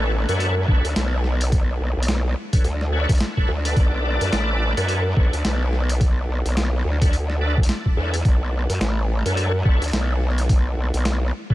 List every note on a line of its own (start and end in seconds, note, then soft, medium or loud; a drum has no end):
0.00 0.26 A1 medium
0.00 0.12 D4 loud
0.00 0.12 A4 medium
0.00 0.12 B4 medium
0.00 0.12 C#5 loud
0.29 0.66 F#2 loud
0.29 0.55 D4 medium
0.29 0.55 A4 medium
0.29 0.55 B4 medium
0.29 0.55 C#5 loud
0.29 closed hi-hat medium
0.40 closed hi-hat medium
0.68 0.82 B1 loud
0.68 0.87 D4 medium
0.68 0.87 A4 medium
0.68 0.87 B4 medium
0.68 0.87 C#5 medium
0.68 kick loud
0.85 0.94 D2 loud
0.85 closed hi-hat medium
0.96 1.79 B1 loud
0.96 snare loud
0.96 closed hi-hat medium
1.24 snare soft
1.41 closed hi-hat medium
1.52 kick loud
1.52 closed hi-hat medium
1.80 1.94 B1 loud
1.97 2.35 B1 loud
2.03 closed hi-hat medium
2.08 snare loud
2.08 closed hi-hat medium
2.53 2.67 D4 medium
2.53 2.68 A4 medium
2.53 2.68 B4 medium
2.53 2.68 C#5 medium
2.53 kick loud
2.53 closed hi-hat medium
2.64 3.06 D2 loud
2.64 closed hi-hat medium
2.81 snare soft
2.92 3.11 D4 loud
2.92 3.11 A4 medium
2.92 3.11 B4 medium
2.92 3.11 C#5 loud
3.09 3.19 D2 loud
3.09 kick loud
3.09 closed hi-hat medium
3.12 closed hi-hat medium
3.15 closed hi-hat soft
3.18 snare loud
3.18 closed hi-hat soft
3.21 closed hi-hat medium
3.37 3.52 D4 loud
3.37 3.52 A4 medium
3.37 3.52 B4 medium
3.37 3.52 C#5 loud
3.37 kick medium
3.49 3.75 D2 medium
3.65 4.73 D4 loud
3.65 4.73 A4 medium
3.65 4.73 B4 medium
3.65 4.73 D5 loud
3.65 closed hi-hat medium
3.76 4.19 B1 loud
3.76 kick loud
3.76 closed hi-hat medium
4.21 4.31 F#2 medium
4.21 closed hi-hat medium
4.33 4.75 A1 medium
4.33 snare loud
4.33 closed hi-hat medium
4.77 5.15 F#2 loud
4.77 5.04 D4 medium
4.77 5.04 A4 medium
4.77 5.04 B4 medium
4.77 5.04 C#5 medium
4.77 closed hi-hat medium
4.89 closed hi-hat medium
5.17 5.31 B1 loud
5.17 5.35 D4 medium
5.17 5.35 A4 medium
5.17 5.35 B4 medium
5.17 5.35 C#5 medium
5.17 kick loud
5.33 5.43 D2 loud
5.33 closed hi-hat medium
5.45 6.27 B1 loud
5.45 snare loud
5.45 closed hi-hat medium
5.73 snare soft
5.89 closed hi-hat medium
6.01 kick loud
6.01 closed hi-hat medium
6.29 6.43 B1 medium
6.45 6.83 B1 loud
6.45 closed hi-hat medium
6.57 snare loud
6.57 closed hi-hat medium
6.85 7.67 D2 loud
7.02 7.16 D4 medium
7.02 7.16 A4 medium
7.02 7.16 B4 medium
7.02 7.16 C#5 medium
7.02 kick loud
7.02 closed hi-hat medium
7.13 closed hi-hat medium
7.30 snare soft
7.41 7.60 D4 medium
7.41 7.60 A4 medium
7.41 7.60 B4 medium
7.41 7.60 D5 medium
7.58 kick loud
7.63 closed hi-hat medium
7.69 snare loud
7.69 closed hi-hat medium
7.86 kick medium
7.97 8.23 E2 loud
7.97 8.16 D4 medium
7.97 8.16 A4 medium
7.97 8.16 B4 medium
7.97 8.16 C#5 loud
8.14 closed hi-hat medium
8.25 8.67 B1 loud
8.25 kick loud
8.25 closed hi-hat medium
8.70 8.79 F#2 medium
8.70 closed hi-hat medium
8.81 9.23 A1 medium
8.81 snare loud
8.81 closed hi-hat medium
9.26 9.63 F#2 loud
9.26 9.52 D4 medium
9.26 9.52 A4 medium
9.26 9.52 B4 medium
9.26 9.52 C#5 medium
9.26 closed hi-hat medium
9.37 closed hi-hat medium
9.65 9.79 B1 loud
9.65 9.84 D4 medium
9.65 9.84 A4 medium
9.65 9.84 B4 medium
9.65 9.84 C#5 medium
9.65 kick loud
9.82 9.91 D2 loud
9.82 closed hi-hat medium
9.84 closed hi-hat medium
9.88 closed hi-hat soft
9.90 closed hi-hat soft
9.92 10.75 B1 loud
9.92 snare loud
9.92 closed hi-hat soft
9.93 closed hi-hat soft
10.21 snare soft
10.31 snare soft
10.38 snare soft
10.38 closed hi-hat medium
10.49 kick loud
10.49 closed hi-hat soft
10.77 10.91 B1 loud
10.94 11.32 B1 loud
10.94 closed hi-hat medium
11.05 snare loud
11.05 closed hi-hat medium
11.50 11.54 D4 medium
11.50 11.54 A4 medium
11.50 11.54 B4 medium
11.50 11.54 C#5 medium
11.50 kick loud